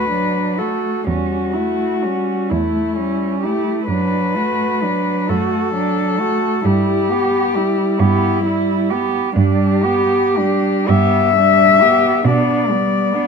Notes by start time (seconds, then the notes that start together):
Already playing: D2 A3 B4
0.10 F#3 D4
0.58 A3 F#4 A4
1.07 E2 G3 C#4 F#4
1.53 A3 E4
2.03 G3 C#4
2.50 E2 A3 E4
2.97 G3 C#4
3.41 E4 G4
3.46 A3
3.88 F#2 F#3 D4 B4
4.35 A3 F#4
4.82 F#3 D4
5.29 F#2 A3 F#4 A4
5.74 F#3 D4
6.18 A3 F#4
6.64 G2 G3 E4 G4
7.10 B3 G4
7.55 G3 E4
8.00 G2 B3 E4 G4
8.44 G3 E4
8.90 B3 G4
9.35 G2 G3 D4 G4
9.83 B3 G4
10.37 G3 D4
10.88 G2 B3 G4 E5
11.36 G3 D4
11.81 B3 G4
12.25 B2 B3 D4 D5
12.70 G3 B3
13.14 B3 D4